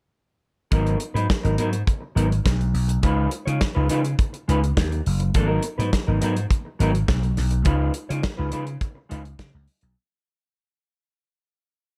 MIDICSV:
0, 0, Header, 1, 5, 480
1, 0, Start_track
1, 0, Tempo, 578035
1, 596, Time_signature, 4, 2, 24, 8
1, 9940, End_track
2, 0, Start_track
2, 0, Title_t, "Clean electric guitar"
2, 0, Program_c, 0, 27
2, 589, Note_on_c, 0, 54, 80
2, 596, Note_on_c, 0, 59, 97
2, 599, Note_on_c, 0, 63, 85
2, 605, Note_on_c, 0, 70, 85
2, 814, Note_off_c, 0, 54, 0
2, 818, Note_off_c, 0, 59, 0
2, 819, Note_off_c, 0, 63, 0
2, 822, Note_off_c, 0, 70, 0
2, 948, Note_on_c, 0, 71, 65
2, 954, Note_on_c, 0, 63, 52
2, 959, Note_on_c, 0, 59, 49
2, 963, Note_on_c, 0, 54, 42
2, 1051, Note_off_c, 0, 71, 0
2, 1054, Note_off_c, 0, 63, 0
2, 1056, Note_off_c, 0, 59, 0
2, 1058, Note_off_c, 0, 54, 0
2, 1190, Note_on_c, 0, 70, 66
2, 1193, Note_on_c, 0, 63, 62
2, 1198, Note_on_c, 0, 59, 60
2, 1204, Note_on_c, 0, 54, 54
2, 1292, Note_off_c, 0, 70, 0
2, 1294, Note_off_c, 0, 63, 0
2, 1296, Note_off_c, 0, 59, 0
2, 1299, Note_off_c, 0, 54, 0
2, 1311, Note_on_c, 0, 54, 64
2, 1314, Note_on_c, 0, 59, 73
2, 1317, Note_on_c, 0, 63, 74
2, 1324, Note_on_c, 0, 70, 81
2, 1418, Note_off_c, 0, 70, 0
2, 1421, Note_off_c, 0, 63, 0
2, 1427, Note_off_c, 0, 59, 0
2, 1440, Note_off_c, 0, 54, 0
2, 1787, Note_on_c, 0, 54, 73
2, 1794, Note_on_c, 0, 59, 85
2, 1797, Note_on_c, 0, 63, 84
2, 1802, Note_on_c, 0, 70, 88
2, 1896, Note_off_c, 0, 70, 0
2, 1904, Note_off_c, 0, 63, 0
2, 1906, Note_off_c, 0, 59, 0
2, 1919, Note_off_c, 0, 54, 0
2, 2513, Note_on_c, 0, 56, 81
2, 2517, Note_on_c, 0, 63, 85
2, 2522, Note_on_c, 0, 65, 77
2, 2527, Note_on_c, 0, 71, 98
2, 2738, Note_off_c, 0, 56, 0
2, 2740, Note_off_c, 0, 63, 0
2, 2742, Note_off_c, 0, 65, 0
2, 2745, Note_off_c, 0, 71, 0
2, 2870, Note_on_c, 0, 73, 68
2, 2877, Note_on_c, 0, 65, 58
2, 2881, Note_on_c, 0, 63, 54
2, 2885, Note_on_c, 0, 56, 48
2, 2973, Note_off_c, 0, 73, 0
2, 2977, Note_off_c, 0, 65, 0
2, 2979, Note_off_c, 0, 63, 0
2, 2981, Note_off_c, 0, 56, 0
2, 3113, Note_on_c, 0, 71, 72
2, 3116, Note_on_c, 0, 65, 60
2, 3121, Note_on_c, 0, 63, 72
2, 3130, Note_on_c, 0, 56, 60
2, 3215, Note_off_c, 0, 71, 0
2, 3217, Note_off_c, 0, 65, 0
2, 3219, Note_off_c, 0, 63, 0
2, 3222, Note_off_c, 0, 56, 0
2, 3232, Note_on_c, 0, 56, 70
2, 3234, Note_on_c, 0, 63, 84
2, 3243, Note_on_c, 0, 65, 78
2, 3245, Note_on_c, 0, 71, 90
2, 3341, Note_off_c, 0, 71, 0
2, 3350, Note_off_c, 0, 65, 0
2, 3354, Note_off_c, 0, 63, 0
2, 3362, Note_off_c, 0, 56, 0
2, 3719, Note_on_c, 0, 56, 75
2, 3727, Note_on_c, 0, 63, 79
2, 3730, Note_on_c, 0, 65, 77
2, 3736, Note_on_c, 0, 71, 97
2, 3832, Note_off_c, 0, 71, 0
2, 3837, Note_off_c, 0, 65, 0
2, 3842, Note_off_c, 0, 63, 0
2, 3846, Note_off_c, 0, 56, 0
2, 4439, Note_on_c, 0, 53, 84
2, 4445, Note_on_c, 0, 58, 87
2, 4451, Note_on_c, 0, 62, 74
2, 4452, Note_on_c, 0, 69, 95
2, 4530, Note_off_c, 0, 53, 0
2, 4530, Note_on_c, 0, 54, 84
2, 4536, Note_off_c, 0, 58, 0
2, 4536, Note_on_c, 0, 59, 87
2, 4542, Note_off_c, 0, 62, 0
2, 4542, Note_on_c, 0, 63, 74
2, 4543, Note_off_c, 0, 69, 0
2, 4543, Note_on_c, 0, 70, 95
2, 4662, Note_off_c, 0, 54, 0
2, 4665, Note_off_c, 0, 59, 0
2, 4667, Note_off_c, 0, 63, 0
2, 4668, Note_off_c, 0, 70, 0
2, 4797, Note_on_c, 0, 71, 62
2, 4801, Note_on_c, 0, 63, 61
2, 4807, Note_on_c, 0, 59, 56
2, 4812, Note_on_c, 0, 54, 54
2, 4898, Note_off_c, 0, 71, 0
2, 4900, Note_off_c, 0, 63, 0
2, 4903, Note_off_c, 0, 59, 0
2, 4905, Note_off_c, 0, 54, 0
2, 5042, Note_on_c, 0, 70, 61
2, 5046, Note_on_c, 0, 63, 63
2, 5053, Note_on_c, 0, 59, 59
2, 5057, Note_on_c, 0, 54, 49
2, 5140, Note_off_c, 0, 70, 0
2, 5142, Note_off_c, 0, 63, 0
2, 5144, Note_off_c, 0, 54, 0
2, 5146, Note_off_c, 0, 59, 0
2, 5154, Note_on_c, 0, 54, 83
2, 5159, Note_on_c, 0, 59, 79
2, 5162, Note_on_c, 0, 63, 81
2, 5167, Note_on_c, 0, 70, 80
2, 5275, Note_off_c, 0, 70, 0
2, 5281, Note_off_c, 0, 63, 0
2, 5284, Note_off_c, 0, 54, 0
2, 5286, Note_off_c, 0, 59, 0
2, 5640, Note_on_c, 0, 54, 86
2, 5647, Note_on_c, 0, 59, 87
2, 5650, Note_on_c, 0, 63, 90
2, 5655, Note_on_c, 0, 70, 92
2, 5748, Note_off_c, 0, 70, 0
2, 5753, Note_off_c, 0, 63, 0
2, 5758, Note_off_c, 0, 59, 0
2, 5766, Note_off_c, 0, 54, 0
2, 6345, Note_on_c, 0, 56, 80
2, 6354, Note_on_c, 0, 63, 84
2, 6358, Note_on_c, 0, 65, 86
2, 6362, Note_on_c, 0, 71, 91
2, 6574, Note_off_c, 0, 56, 0
2, 6578, Note_off_c, 0, 63, 0
2, 6581, Note_off_c, 0, 65, 0
2, 6582, Note_off_c, 0, 71, 0
2, 6719, Note_on_c, 0, 73, 67
2, 6723, Note_on_c, 0, 65, 69
2, 6731, Note_on_c, 0, 56, 44
2, 6731, Note_on_c, 0, 63, 54
2, 6818, Note_off_c, 0, 73, 0
2, 6820, Note_off_c, 0, 65, 0
2, 6824, Note_off_c, 0, 56, 0
2, 6824, Note_off_c, 0, 63, 0
2, 6953, Note_on_c, 0, 71, 65
2, 6958, Note_on_c, 0, 65, 70
2, 6963, Note_on_c, 0, 63, 56
2, 6971, Note_on_c, 0, 56, 61
2, 7055, Note_off_c, 0, 71, 0
2, 7057, Note_off_c, 0, 56, 0
2, 7057, Note_off_c, 0, 65, 0
2, 7060, Note_off_c, 0, 63, 0
2, 7067, Note_on_c, 0, 56, 72
2, 7072, Note_on_c, 0, 63, 76
2, 7080, Note_on_c, 0, 65, 74
2, 7082, Note_on_c, 0, 71, 74
2, 7183, Note_off_c, 0, 71, 0
2, 7187, Note_off_c, 0, 65, 0
2, 7193, Note_off_c, 0, 63, 0
2, 7199, Note_off_c, 0, 56, 0
2, 7550, Note_on_c, 0, 56, 79
2, 7556, Note_on_c, 0, 63, 90
2, 7561, Note_on_c, 0, 65, 85
2, 7567, Note_on_c, 0, 71, 85
2, 7663, Note_off_c, 0, 71, 0
2, 7671, Note_off_c, 0, 65, 0
2, 7676, Note_off_c, 0, 63, 0
2, 7680, Note_off_c, 0, 56, 0
2, 9940, End_track
3, 0, Start_track
3, 0, Title_t, "Slap bass"
3, 0, Program_c, 1, 36
3, 597, Note_on_c, 1, 32, 105
3, 786, Note_off_c, 1, 32, 0
3, 952, Note_on_c, 1, 44, 96
3, 1049, Note_off_c, 1, 44, 0
3, 1199, Note_on_c, 1, 32, 92
3, 1293, Note_off_c, 1, 32, 0
3, 1319, Note_on_c, 1, 44, 88
3, 1508, Note_off_c, 1, 44, 0
3, 1792, Note_on_c, 1, 32, 94
3, 1984, Note_off_c, 1, 32, 0
3, 2042, Note_on_c, 1, 35, 89
3, 2230, Note_off_c, 1, 35, 0
3, 2274, Note_on_c, 1, 35, 80
3, 2466, Note_off_c, 1, 35, 0
3, 2521, Note_on_c, 1, 37, 114
3, 2710, Note_off_c, 1, 37, 0
3, 2882, Note_on_c, 1, 49, 99
3, 2976, Note_off_c, 1, 49, 0
3, 3125, Note_on_c, 1, 37, 91
3, 3218, Note_off_c, 1, 37, 0
3, 3251, Note_on_c, 1, 49, 92
3, 3436, Note_off_c, 1, 49, 0
3, 3725, Note_on_c, 1, 37, 93
3, 3913, Note_off_c, 1, 37, 0
3, 3962, Note_on_c, 1, 39, 71
3, 4151, Note_off_c, 1, 39, 0
3, 4206, Note_on_c, 1, 30, 84
3, 4393, Note_off_c, 1, 30, 0
3, 4442, Note_on_c, 1, 32, 102
3, 4631, Note_off_c, 1, 32, 0
3, 4806, Note_on_c, 1, 44, 113
3, 4899, Note_off_c, 1, 44, 0
3, 5047, Note_on_c, 1, 32, 89
3, 5140, Note_off_c, 1, 32, 0
3, 5170, Note_on_c, 1, 44, 90
3, 5356, Note_off_c, 1, 44, 0
3, 5645, Note_on_c, 1, 32, 79
3, 5833, Note_off_c, 1, 32, 0
3, 5882, Note_on_c, 1, 35, 85
3, 6071, Note_off_c, 1, 35, 0
3, 6125, Note_on_c, 1, 35, 74
3, 6313, Note_off_c, 1, 35, 0
3, 6361, Note_on_c, 1, 37, 103
3, 6550, Note_off_c, 1, 37, 0
3, 6728, Note_on_c, 1, 49, 96
3, 6819, Note_off_c, 1, 49, 0
3, 6967, Note_on_c, 1, 37, 85
3, 7059, Note_off_c, 1, 37, 0
3, 7086, Note_on_c, 1, 49, 92
3, 7273, Note_off_c, 1, 49, 0
3, 7568, Note_on_c, 1, 37, 85
3, 7753, Note_off_c, 1, 37, 0
3, 7800, Note_on_c, 1, 49, 78
3, 7894, Note_off_c, 1, 49, 0
3, 7926, Note_on_c, 1, 37, 77
3, 8017, Note_off_c, 1, 37, 0
3, 8159, Note_on_c, 1, 35, 98
3, 8253, Note_off_c, 1, 35, 0
3, 9940, End_track
4, 0, Start_track
4, 0, Title_t, "Muted clean electric guitar strokes"
4, 825, Note_on_c, 9, 29, 43
4, 908, Note_off_c, 9, 29, 0
4, 1428, Note_on_c, 9, 29, 46
4, 1511, Note_off_c, 9, 29, 0
4, 1665, Note_on_c, 9, 29, 46
4, 1748, Note_off_c, 9, 29, 0
4, 1906, Note_on_c, 9, 29, 42
4, 1989, Note_off_c, 9, 29, 0
4, 2026, Note_on_c, 9, 29, 47
4, 2109, Note_off_c, 9, 29, 0
4, 2144, Note_on_c, 9, 29, 43
4, 2227, Note_off_c, 9, 29, 0
4, 2392, Note_on_c, 9, 29, 41
4, 2475, Note_off_c, 9, 29, 0
4, 2752, Note_on_c, 9, 29, 41
4, 2835, Note_off_c, 9, 29, 0
4, 2994, Note_on_c, 9, 29, 39
4, 3077, Note_off_c, 9, 29, 0
4, 3351, Note_on_c, 9, 29, 38
4, 3434, Note_off_c, 9, 29, 0
4, 3596, Note_on_c, 9, 29, 47
4, 3679, Note_off_c, 9, 29, 0
4, 3842, Note_on_c, 9, 29, 44
4, 3925, Note_off_c, 9, 29, 0
4, 3963, Note_on_c, 9, 29, 35
4, 4046, Note_off_c, 9, 29, 0
4, 4078, Note_on_c, 9, 29, 50
4, 4161, Note_off_c, 9, 29, 0
4, 4319, Note_on_c, 9, 29, 49
4, 4402, Note_off_c, 9, 29, 0
4, 4683, Note_on_c, 9, 29, 48
4, 4766, Note_off_c, 9, 29, 0
4, 4929, Note_on_c, 9, 29, 48
4, 5012, Note_off_c, 9, 29, 0
4, 5285, Note_on_c, 9, 29, 40
4, 5368, Note_off_c, 9, 29, 0
4, 5523, Note_on_c, 9, 29, 42
4, 5606, Note_off_c, 9, 29, 0
4, 5758, Note_on_c, 9, 29, 55
4, 5841, Note_off_c, 9, 29, 0
4, 5876, Note_on_c, 9, 29, 40
4, 5959, Note_off_c, 9, 29, 0
4, 5996, Note_on_c, 9, 29, 47
4, 6079, Note_off_c, 9, 29, 0
4, 6236, Note_on_c, 9, 29, 40
4, 6319, Note_off_c, 9, 29, 0
4, 6599, Note_on_c, 9, 29, 36
4, 6682, Note_off_c, 9, 29, 0
4, 6837, Note_on_c, 9, 29, 46
4, 6920, Note_off_c, 9, 29, 0
4, 7193, Note_on_c, 9, 29, 36
4, 7276, Note_off_c, 9, 29, 0
4, 7435, Note_on_c, 9, 29, 41
4, 7518, Note_off_c, 9, 29, 0
4, 7793, Note_on_c, 9, 29, 52
4, 7876, Note_off_c, 9, 29, 0
4, 7914, Note_on_c, 9, 29, 40
4, 7997, Note_off_c, 9, 29, 0
4, 8157, Note_on_c, 9, 29, 42
4, 8240, Note_off_c, 9, 29, 0
4, 9940, End_track
5, 0, Start_track
5, 0, Title_t, "Drums"
5, 595, Note_on_c, 9, 42, 77
5, 596, Note_on_c, 9, 36, 119
5, 678, Note_off_c, 9, 42, 0
5, 679, Note_off_c, 9, 36, 0
5, 719, Note_on_c, 9, 42, 34
5, 802, Note_off_c, 9, 42, 0
5, 830, Note_on_c, 9, 42, 62
5, 913, Note_off_c, 9, 42, 0
5, 967, Note_on_c, 9, 42, 40
5, 1050, Note_off_c, 9, 42, 0
5, 1078, Note_on_c, 9, 38, 105
5, 1078, Note_on_c, 9, 42, 70
5, 1079, Note_on_c, 9, 36, 102
5, 1161, Note_off_c, 9, 38, 0
5, 1161, Note_off_c, 9, 42, 0
5, 1162, Note_off_c, 9, 36, 0
5, 1202, Note_on_c, 9, 42, 35
5, 1285, Note_off_c, 9, 42, 0
5, 1314, Note_on_c, 9, 42, 70
5, 1397, Note_off_c, 9, 42, 0
5, 1435, Note_on_c, 9, 42, 48
5, 1518, Note_off_c, 9, 42, 0
5, 1556, Note_on_c, 9, 36, 100
5, 1564, Note_on_c, 9, 42, 61
5, 1639, Note_off_c, 9, 36, 0
5, 1647, Note_off_c, 9, 42, 0
5, 1804, Note_on_c, 9, 42, 60
5, 1887, Note_off_c, 9, 42, 0
5, 1929, Note_on_c, 9, 42, 39
5, 2012, Note_off_c, 9, 42, 0
5, 2039, Note_on_c, 9, 36, 117
5, 2042, Note_on_c, 9, 42, 93
5, 2045, Note_on_c, 9, 38, 115
5, 2123, Note_off_c, 9, 36, 0
5, 2125, Note_off_c, 9, 42, 0
5, 2128, Note_off_c, 9, 38, 0
5, 2166, Note_on_c, 9, 42, 33
5, 2249, Note_off_c, 9, 42, 0
5, 2281, Note_on_c, 9, 46, 53
5, 2364, Note_off_c, 9, 46, 0
5, 2401, Note_on_c, 9, 42, 51
5, 2484, Note_off_c, 9, 42, 0
5, 2517, Note_on_c, 9, 42, 78
5, 2519, Note_on_c, 9, 36, 116
5, 2600, Note_off_c, 9, 42, 0
5, 2602, Note_off_c, 9, 36, 0
5, 2752, Note_on_c, 9, 42, 68
5, 2835, Note_off_c, 9, 42, 0
5, 2886, Note_on_c, 9, 42, 41
5, 2969, Note_off_c, 9, 42, 0
5, 2997, Note_on_c, 9, 42, 75
5, 2998, Note_on_c, 9, 38, 100
5, 3001, Note_on_c, 9, 36, 90
5, 3080, Note_off_c, 9, 42, 0
5, 3081, Note_off_c, 9, 38, 0
5, 3084, Note_off_c, 9, 36, 0
5, 3234, Note_on_c, 9, 42, 68
5, 3317, Note_off_c, 9, 42, 0
5, 3359, Note_on_c, 9, 42, 44
5, 3442, Note_off_c, 9, 42, 0
5, 3478, Note_on_c, 9, 36, 110
5, 3480, Note_on_c, 9, 42, 63
5, 3561, Note_off_c, 9, 36, 0
5, 3563, Note_off_c, 9, 42, 0
5, 3603, Note_on_c, 9, 42, 34
5, 3686, Note_off_c, 9, 42, 0
5, 3728, Note_on_c, 9, 42, 57
5, 3812, Note_off_c, 9, 42, 0
5, 3851, Note_on_c, 9, 42, 39
5, 3934, Note_off_c, 9, 42, 0
5, 3962, Note_on_c, 9, 36, 107
5, 3962, Note_on_c, 9, 42, 88
5, 3964, Note_on_c, 9, 38, 111
5, 4045, Note_off_c, 9, 36, 0
5, 4045, Note_off_c, 9, 42, 0
5, 4048, Note_off_c, 9, 38, 0
5, 4088, Note_on_c, 9, 42, 33
5, 4171, Note_off_c, 9, 42, 0
5, 4205, Note_on_c, 9, 46, 60
5, 4288, Note_off_c, 9, 46, 0
5, 4317, Note_on_c, 9, 42, 46
5, 4400, Note_off_c, 9, 42, 0
5, 4438, Note_on_c, 9, 42, 85
5, 4441, Note_on_c, 9, 36, 102
5, 4521, Note_off_c, 9, 42, 0
5, 4524, Note_off_c, 9, 36, 0
5, 4671, Note_on_c, 9, 42, 67
5, 4754, Note_off_c, 9, 42, 0
5, 4814, Note_on_c, 9, 42, 41
5, 4897, Note_off_c, 9, 42, 0
5, 4923, Note_on_c, 9, 42, 78
5, 4924, Note_on_c, 9, 36, 91
5, 4924, Note_on_c, 9, 38, 102
5, 5006, Note_off_c, 9, 42, 0
5, 5007, Note_off_c, 9, 36, 0
5, 5007, Note_off_c, 9, 38, 0
5, 5162, Note_on_c, 9, 42, 64
5, 5245, Note_off_c, 9, 42, 0
5, 5285, Note_on_c, 9, 42, 42
5, 5368, Note_off_c, 9, 42, 0
5, 5402, Note_on_c, 9, 36, 103
5, 5409, Note_on_c, 9, 42, 72
5, 5485, Note_off_c, 9, 36, 0
5, 5492, Note_off_c, 9, 42, 0
5, 5650, Note_on_c, 9, 42, 55
5, 5733, Note_off_c, 9, 42, 0
5, 5770, Note_on_c, 9, 42, 40
5, 5853, Note_off_c, 9, 42, 0
5, 5882, Note_on_c, 9, 36, 121
5, 5882, Note_on_c, 9, 42, 76
5, 5885, Note_on_c, 9, 38, 115
5, 5965, Note_off_c, 9, 36, 0
5, 5966, Note_off_c, 9, 42, 0
5, 5968, Note_off_c, 9, 38, 0
5, 6005, Note_on_c, 9, 42, 33
5, 6088, Note_off_c, 9, 42, 0
5, 6121, Note_on_c, 9, 46, 56
5, 6123, Note_on_c, 9, 38, 28
5, 6204, Note_off_c, 9, 46, 0
5, 6206, Note_off_c, 9, 38, 0
5, 6234, Note_on_c, 9, 42, 44
5, 6317, Note_off_c, 9, 42, 0
5, 6352, Note_on_c, 9, 42, 78
5, 6358, Note_on_c, 9, 36, 106
5, 6435, Note_off_c, 9, 42, 0
5, 6441, Note_off_c, 9, 36, 0
5, 6592, Note_on_c, 9, 42, 62
5, 6675, Note_off_c, 9, 42, 0
5, 6730, Note_on_c, 9, 42, 45
5, 6813, Note_off_c, 9, 42, 0
5, 6837, Note_on_c, 9, 42, 70
5, 6838, Note_on_c, 9, 38, 111
5, 6841, Note_on_c, 9, 36, 94
5, 6920, Note_off_c, 9, 42, 0
5, 6921, Note_off_c, 9, 38, 0
5, 6925, Note_off_c, 9, 36, 0
5, 7073, Note_on_c, 9, 42, 66
5, 7156, Note_off_c, 9, 42, 0
5, 7197, Note_on_c, 9, 42, 41
5, 7281, Note_off_c, 9, 42, 0
5, 7317, Note_on_c, 9, 36, 102
5, 7319, Note_on_c, 9, 42, 65
5, 7400, Note_off_c, 9, 36, 0
5, 7402, Note_off_c, 9, 42, 0
5, 7565, Note_on_c, 9, 42, 59
5, 7648, Note_off_c, 9, 42, 0
5, 7683, Note_on_c, 9, 42, 37
5, 7766, Note_off_c, 9, 42, 0
5, 7798, Note_on_c, 9, 36, 102
5, 7798, Note_on_c, 9, 42, 78
5, 7801, Note_on_c, 9, 38, 106
5, 7881, Note_off_c, 9, 36, 0
5, 7881, Note_off_c, 9, 42, 0
5, 7884, Note_off_c, 9, 38, 0
5, 8034, Note_on_c, 9, 46, 56
5, 8117, Note_off_c, 9, 46, 0
5, 8148, Note_on_c, 9, 42, 48
5, 8231, Note_off_c, 9, 42, 0
5, 9940, End_track
0, 0, End_of_file